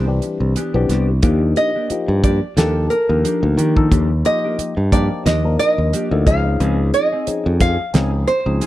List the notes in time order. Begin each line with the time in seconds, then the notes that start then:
Already playing: C2 C5
0.07 E3 G3 C4 D4 G4
0.22 muted clean electric guitar stroke, closed hi-hat
0.40 C2
0.56 E3 B3 D4 G4, closed hi-hat
0.74 B1 E3 B3 C4 D4 G4, muted clean electric guitar stroke
0.89 C2 E3 B3 D4 G4, snare, closed hi-hat
1.08 muted clean electric guitar stroke
1.22 D#2 F3 A#3 D4 D#4 G4, kick, closed hi-hat
1.42 muted clean electric guitar stroke
1.56 D#5, muted clean electric guitar stroke, closed hi-hat
1.75 A#3 D4 G4
1.90 F3 A#3 D#4 F4 G4, muted fingered electric bass stroke, muted clean electric guitar stroke, closed hi-hat
2.08 G2
2.24 F3 A#3 D4 G4 D5, kick, closed hi-hat
2.42 muted clean electric guitar stroke
2.57 D#2 F3 A#3 D4 D#4 G4 A4, snare, closed hi-hat
2.76 muted clean electric guitar stroke
2.90 A#4, muted clean electric guitar stroke, closed hi-hat
3.09 D#2 F3 A#3 D4 D#4 A#4
3.24 F3 A#3 D4 G4, closed hi-hat
3.43 D2, muted clean electric guitar stroke
3.57 D#3 F3 A#3 D4 G4, closed hi-hat
3.76 F3 A#3 D4 D#4 A4, kick
3.91 D#2 F3 A#3 D4 G4, kick, closed hi-hat
4.11 muted clean electric guitar stroke
4.24 F3 A#3 D#4 F4 G4 D#5, muted clean electric guitar stroke, closed hi-hat
4.44 A#3 D4 G4
4.58 muted fingered electric bass stroke, muted clean electric guitar stroke, closed hi-hat
4.77 G2
4.92 F3 A#3 D4 D#4 G4 D5, kick, closed hi-hat
5.11 muted clean electric guitar stroke
5.26 D#2 F3 A#3 D4 G4 D#5, snare, closed hi-hat
5.44 F3 A#3 D4 D#4 A#4, muted clean electric guitar stroke
5.59 D#5, muted clean electric guitar stroke, closed hi-hat
5.78 D#2
5.93 F3 A#3 D4 G4, closed hi-hat
6.11 D2 F3 A#3 D4 D#4 A4, muted clean electric guitar stroke
6.26 C#2 F3 C4 C#4 D#4 G#4 F5, kick, closed hi-hat
6.45 muted clean electric guitar stroke
6.60 C#2 F3 C4 D#4 G#4, closed hi-hat
6.79 muted clean electric guitar stroke
6.94 D#5, muted clean electric guitar stroke, closed hi-hat
7.12 C4 D#4 G#4
7.27 F3 C4 C#4 D#4 G#4, muted clean electric guitar stroke, muted fingered electric bass stroke, closed hi-hat
7.46 F2
7.60 F3 C4 D#4 G#4 F5, kick, closed hi-hat
7.79 muted clean electric guitar stroke
7.93 C#2 F3 C4 C#4 D#4 G#4, snare, closed hi-hat
8.13 muted clean electric guitar stroke
8.27 C5, muted clean electric guitar stroke, closed hi-hat
8.45 C#2 F3 C4 C#4 D#4 G#4
8.61 F3 C4 D#4 G#4, closed hi-hat